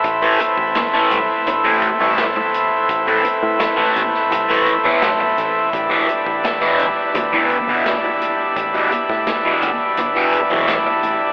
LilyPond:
<<
  \new Staff \with { instrumentName = "Transistor combo organ" } { \time 4/4 \key a \minor \tempo 4 = 85 <e' b' e''>1~ | <e' b' e''>1~ | <e' b' e''>1~ | <e' b' e''>1 | }
  \new Staff \with { instrumentName = "Transistor combo organ" } { \time 4/4 \key a \minor <a c'>1~ | <a c'>1 | <g d'>1~ | <g d'>1 | }
  \new Staff \with { instrumentName = "Distorted electric guitar" } { \clef bass \time 4/4 \key a \minor r16 <a, e a>16 r8. <a, e a>16 r8. <a, e a>16 r16 <a, e a>16 r4 | r16 <a, e a>16 r8. <a, e a>16 r8. <a, e a>16 r16 <a, e a>16 r4 | r16 <e, b, e>16 r8. <e, b, e>16 r8. <e, b, e>16 r16 <e, b, e>16 r4 | r16 <e, b, e>16 r8. <e, b, e>16 r8. <e, b, e>16 r16 <e, b, e>16 r4 | }
  \new Staff \with { instrumentName = "Picked electric bass" } { \clef bass \time 4/4 \key a \minor a,,8 r16 a,,8. c,16 r16 g,,8. c,8. e,16 r16 | a,,8 r16 a,8 r16 a,,16 r16 c,8 r16 e,16 b,,8 a,,8 | a,,8 r16 a,,8. g,,16 r16 d,8. g,,8. b,,16 r16 | a,,8 r16 a,8 r16 a,,16 r16 g,,8 r16 b,,8 r16 a,,16 r16 | }
  \new DrumStaff \with { instrumentName = "Drums" } \drummode { \time 4/4 <hh bd>8 hh16 bd16 <hh sn>8 hh8 hh8 <hh bd>8 <hh sn>8 hh8 | <hh bd>8 hh8 <hh sn>8 hh16 sn16 hh16 sn16 <hh bd>8 <hh sn>8 hh8 | <hh bd>8 hh16 bd16 <hh sn>8 hh8 hh8 <hh bd>8 <hh sn>8 hh8 | <hh bd>8 hh16 <bd sn>16 <hh sn>8 hh8 hh8 <hh bd>8 <hh sn>8 hh8 | }
>>